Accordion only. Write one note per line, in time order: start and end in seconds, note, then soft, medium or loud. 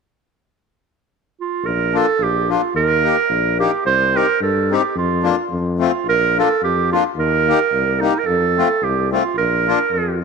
1.94 2.06 A#3 soft
1.94 2.06 D4 soft
1.94 2.06 F4 medium
2.49 2.62 A#3 soft
2.49 2.61 D4 soft
2.49 2.62 F4 soft
3.03 3.16 A#3 soft
3.03 3.16 D#4 soft
3.03 3.17 G4 soft
3.58 3.71 A#3 soft
3.58 3.71 D#4 soft
3.58 3.72 G4 medium
4.14 4.26 C4 soft
4.14 4.26 D#4 soft
4.14 4.27 G4 soft
4.71 4.82 C4 soft
4.71 4.82 D#4 soft
4.71 4.83 G4 medium
5.23 5.35 A#3 soft
5.23 5.35 D4 soft
5.23 5.36 F4 soft
5.79 5.91 A3 soft
5.79 5.92 C4 soft
5.79 5.92 F4 soft
6.38 6.48 A#3 soft
6.38 6.49 D4 soft
6.38 6.49 F4 medium
6.92 7.03 A#3 soft
6.92 7.04 D4 soft
6.92 7.04 F4 soft
7.47 7.58 A#3 soft
7.47 7.59 D#4 soft
7.47 7.59 G4 medium
8.01 8.13 A#3 soft
8.01 8.13 D#4 soft
8.01 8.14 G4 soft
8.58 8.68 A3 soft
8.58 8.68 C4 soft
8.58 8.69 F4 medium
9.12 9.23 A3 soft
9.12 9.23 C4 soft
9.12 9.23 F4 soft
9.68 9.78 A#3 soft
9.68 9.79 D4 soft
9.68 9.79 F4 medium